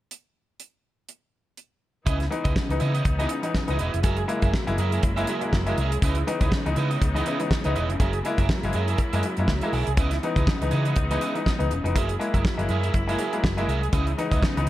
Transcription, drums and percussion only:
0.11 closed hi-hat
0.60 closed hi-hat
1.09 closed hi-hat
1.57 closed hi-hat
2.07 kick, closed hi-hat
2.20 snare, closed hi-hat
2.32 closed hi-hat
2.45 kick, closed hi-hat
2.56 kick, snare
2.70 closed hi-hat
2.80 closed hi-hat
2.95 closed hi-hat
3.05 kick, closed hi-hat
3.20 closed hi-hat
3.29 closed hi-hat
3.43 closed hi-hat
3.54 kick, snare
3.68 closed hi-hat
3.79 closed hi-hat
3.94 closed hi-hat
4.03 kick, closed hi-hat
4.17 closed hi-hat
4.29 closed hi-hat
4.42 kick, closed hi-hat
4.54 kick, snare
4.67 closed hi-hat
4.78 closed hi-hat
4.92 closed hi-hat
5.03 kick, closed hi-hat
5.17 closed hi-hat
5.27 closed hi-hat
5.41 closed hi-hat
5.53 kick, snare
5.67 closed hi-hat
5.78 closed hi-hat
5.92 closed hi-hat
6.02 kick, closed hi-hat
6.15 closed hi-hat
6.28 closed hi-hat
6.41 kick, closed hi-hat
6.52 kick, snare
6.66 closed hi-hat
6.76 closed hi-hat
6.91 closed hi-hat
7.02 kick, closed hi-hat
7.16 closed hi-hat
7.26 closed hi-hat
7.40 closed hi-hat
7.51 kick, snare
7.64 closed hi-hat
7.76 closed hi-hat
7.90 closed hi-hat
8.00 kick, closed hi-hat
8.13 closed hi-hat
8.25 closed hi-hat
8.38 kick, closed hi-hat
8.49 kick, snare
8.63 closed hi-hat
8.73 closed hi-hat
8.88 closed hi-hat
8.98 kick, closed hi-hat
9.13 closed hi-hat
9.23 closed hi-hat
9.37 closed hi-hat
9.48 kick, snare
9.61 closed hi-hat
9.73 open hi-hat
9.87 closed hi-hat
9.97 kick, closed hi-hat
10.11 snare, closed hi-hat
10.23 closed hi-hat
10.36 kick, closed hi-hat
10.47 kick, snare
10.62 closed hi-hat
10.71 closed hi-hat
10.85 closed hi-hat
10.96 kick, closed hi-hat
11.11 closed hi-hat
11.21 closed hi-hat
11.35 closed hi-hat
11.46 kick, snare
11.60 closed hi-hat
11.71 closed hi-hat
11.86 closed hi-hat
11.96 kick, closed hi-hat
12.09 closed hi-hat
12.21 closed hi-hat
12.34 kick, closed hi-hat
12.45 kick, snare
12.59 closed hi-hat
12.69 closed hi-hat
12.83 closed hi-hat
12.94 kick, closed hi-hat
13.09 closed hi-hat
13.19 closed hi-hat
13.33 closed hi-hat
13.44 kick, snare
13.58 closed hi-hat
13.69 closed hi-hat
13.83 closed hi-hat
13.93 kick, closed hi-hat
14.07 closed hi-hat
14.19 closed hi-hat
14.32 kick, closed hi-hat
14.43 kick, snare
14.57 closed hi-hat

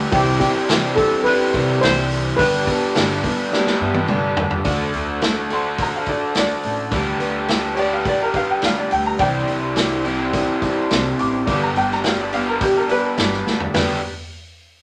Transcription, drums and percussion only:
0.12 kick, open hi-hat
0.41 kick, open hi-hat
0.69 snare, open hi-hat
0.97 kick, open hi-hat
1.26 open hi-hat
1.54 kick, open hi-hat
1.83 snare, open hi-hat
2.11 open hi-hat
2.39 kick, open hi-hat
2.67 kick, open hi-hat
2.95 snare, open hi-hat
3.24 kick, open hi-hat
3.53 snare
3.67 snare
3.94 high tom
4.08 mid tom
4.37 floor tom
4.51 floor tom
4.65 kick, open hi-hat
4.94 open hi-hat
5.22 snare, open hi-hat
5.50 open hi-hat
5.78 kick, open hi-hat
6.06 kick, open hi-hat
6.35 snare, open hi-hat
6.63 open hi-hat
6.91 kick, open hi-hat
7.20 open hi-hat
7.48 snare, open hi-hat
7.77 open hi-hat
8.05 kick, open hi-hat
8.34 kick, open hi-hat
8.62 snare, open hi-hat
8.91 open hi-hat
9.19 kick, open hi-hat
9.48 open hi-hat
9.76 snare, open hi-hat
10.05 open hi-hat
10.33 kick, open hi-hat
10.62 kick, open hi-hat
10.91 snare, open hi-hat
11.19 open hi-hat
11.47 kick, open hi-hat
11.76 open hi-hat
11.91 snare
12.04 snare, open hi-hat
12.33 open hi-hat
12.61 kick, open hi-hat
12.89 open hi-hat
13.18 snare, open hi-hat
13.33 snare
13.47 snare
13.60 floor tom
13.74 snare, floor tom, open hi-hat

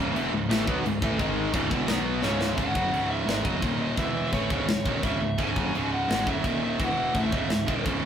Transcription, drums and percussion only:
0.16 china
0.51 snare, china
0.67 kick
0.86 china
1.02 kick
1.19 kick, china
1.54 kick, china
1.71 kick
1.88 snare, china
2.23 snare
2.41 snare
2.58 kick, china
2.75 kick
2.94 china
3.29 snare, china
3.45 kick
3.62 kick, china
3.98 kick, china
4.33 kick, china
4.50 kick
4.69 snare, china
4.86 kick
5.03 kick, china
5.38 kick, china
5.56 kick
5.75 china
6.11 snare, china
6.27 kick
6.44 kick, china
6.80 kick, china
7.15 kick, china
7.32 kick
7.50 snare, china
7.68 kick
7.86 kick, china

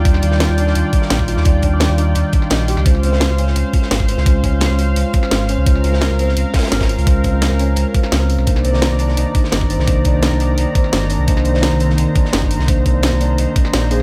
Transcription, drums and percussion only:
0.05 kick, closed hi-hat
0.14 snare
0.22 closed hi-hat
0.32 snare
0.40 snare, closed hi-hat
0.58 closed hi-hat, open hi-hat
0.67 snare
0.75 closed hi-hat
0.93 kick, closed hi-hat
1.02 snare
1.10 snare, closed hi-hat
1.19 kick
1.28 closed hi-hat, open hi-hat
1.37 snare
1.45 kick, closed hi-hat
1.62 kick, closed hi-hat
1.80 snare, closed hi-hat
1.98 closed hi-hat, open hi-hat
2.15 closed hi-hat
2.33 kick, closed hi-hat
2.42 snare
2.50 snare, closed hi-hat
2.68 closed hi-hat, open hi-hat
2.77 snare
2.86 kick, closed hi-hat
2.95 snare
3.03 closed hi-hat
3.12 snare
3.20 snare, closed hi-hat
3.38 closed hi-hat, open hi-hat
3.47 snare
3.56 closed hi-hat
3.73 kick, closed hi-hat
3.82 snare
3.91 snare, closed hi-hat
4.00 kick
4.08 closed hi-hat, open hi-hat
4.17 snare
4.26 kick, closed hi-hat
4.44 kick, closed hi-hat
4.61 snare, closed hi-hat
4.79 closed hi-hat, open hi-hat
4.96 closed hi-hat
5.13 kick, closed hi-hat
5.23 snare
5.31 snare, closed hi-hat
5.49 closed hi-hat, open hi-hat
5.66 kick, closed hi-hat
5.75 snare
5.84 closed hi-hat
5.93 snare
6.01 snare, closed hi-hat
6.19 closed hi-hat, open hi-hat
6.28 snare
6.37 closed hi-hat
6.54 kick, snare, closed hi-hat
6.59 snare, closed hi-hat
6.63 snare, closed hi-hat
6.67 snare, closed hi-hat
6.72 snare, closed hi-hat
6.81 kick, snare, closed hi-hat
6.89 open hi-hat
6.98 closed hi-hat
7.07 kick, closed hi-hat
7.24 kick, closed hi-hat
7.42 snare, closed hi-hat
7.59 closed hi-hat, open hi-hat
7.76 closed hi-hat
7.94 kick, closed hi-hat
8.03 snare
8.12 snare, closed hi-hat
8.30 open hi-hat
8.38 snare
8.47 kick, closed hi-hat
8.56 snare
8.64 closed hi-hat
8.74 snare
8.82 snare, closed hi-hat
8.99 closed hi-hat, open hi-hat
9.08 snare
9.17 closed hi-hat
9.35 kick, closed hi-hat
9.44 snare
9.52 snare, closed hi-hat
9.61 kick
9.70 closed hi-hat, open hi-hat
9.80 snare
9.88 kick, closed hi-hat
10.05 kick, closed hi-hat
10.22 snare, closed hi-hat
10.40 closed hi-hat, open hi-hat
10.58 closed hi-hat
10.75 kick, closed hi-hat
10.84 snare
10.93 snare, closed hi-hat
11.10 closed hi-hat, open hi-hat
11.28 kick, closed hi-hat
11.37 snare
11.45 closed hi-hat
11.54 snare
11.62 snare, closed hi-hat
11.80 closed hi-hat, open hi-hat
11.90 snare
11.98 closed hi-hat
12.15 kick, closed hi-hat
12.25 snare
12.33 snare, closed hi-hat
12.42 kick
12.51 closed hi-hat, open hi-hat
12.59 snare
12.68 kick, closed hi-hat
12.86 kick, closed hi-hat
13.03 snare, closed hi-hat
13.21 closed hi-hat, open hi-hat
13.38 closed hi-hat
13.56 kick, closed hi-hat
13.65 snare
13.73 snare, closed hi-hat
13.91 closed hi-hat, open hi-hat

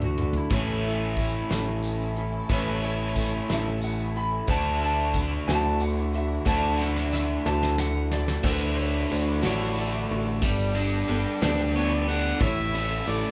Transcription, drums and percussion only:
0.01 mid tom
0.18 mid tom
0.33 floor tom
0.50 kick, closed hi-hat, tambourine
0.83 closed hi-hat
1.16 kick, closed hi-hat, tambourine
1.49 snare, closed hi-hat
1.83 closed hi-hat, tambourine
2.01 tambourine
2.16 closed hi-hat
2.49 kick, closed hi-hat, tambourine
2.83 closed hi-hat
3.16 kick, closed hi-hat, tambourine
3.49 snare, closed hi-hat
3.82 closed hi-hat, tambourine
3.99 tambourine
4.15 closed hi-hat
4.47 kick, closed hi-hat, tambourine
4.81 closed hi-hat
5.14 kick, closed hi-hat, tambourine
5.48 snare, closed hi-hat
5.80 closed hi-hat, tambourine
5.98 tambourine
6.14 closed hi-hat
6.46 kick, snare, tambourine
6.81 snare
6.96 snare
7.13 snare, tambourine
7.46 snare
7.63 snare
7.78 snare, tambourine
8.11 snare
8.28 snare
8.43 kick, crash, tambourine
8.76 ride
9.09 ride, tambourine
9.42 snare, ride
9.75 ride, tambourine
10.08 ride
10.42 kick, crash
10.74 ride
11.08 ride
11.41 snare, ride
11.75 ride
12.08 ride
12.41 kick, ride
12.74 ride
13.06 ride

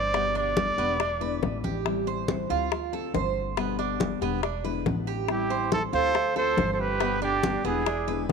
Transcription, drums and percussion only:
0.14 high bongo, high conga
0.36 high bongo, high conga
0.57 high bongo, high conga
0.78 high bongo
1.00 high bongo, high conga
1.21 high bongo, high conga
1.43 high bongo, low bongo, high conga
1.64 high conga
1.86 high bongo, high conga
2.07 high bongo, high conga
2.28 high bongo, high conga
2.50 high bongo, high conga
2.72 high bongo, high conga
2.93 high bongo, high conga
3.14 high bongo, low bongo, high conga
3.57 high bongo, high conga
3.79 high bongo, high conga
4.00 high bongo, high conga
4.22 high bongo
4.43 high bongo, high conga
4.65 high bongo, high conga
4.86 high bongo, low bongo, high conga
5.28 high bongo, high conga
5.50 high bongo, high conga
5.72 high bongo, high conga
5.93 high bongo, high conga
6.15 high bongo, high conga
6.36 high bongo, high conga
6.58 high bongo, low bongo, high conga
7.01 high bongo, high conga
7.22 high bongo, high conga
7.43 high bongo, high conga
7.65 high bongo
7.86 high bongo, high conga
8.08 high bongo, high conga

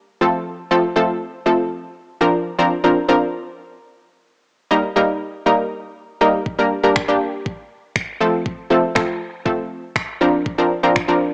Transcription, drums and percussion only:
6.46 kick
6.96 finger snap, kick
7.46 kick
7.96 finger snap, kick
8.46 kick
8.96 finger snap, kick
9.46 kick
9.96 finger snap, kick
10.46 kick
10.96 finger snap, kick

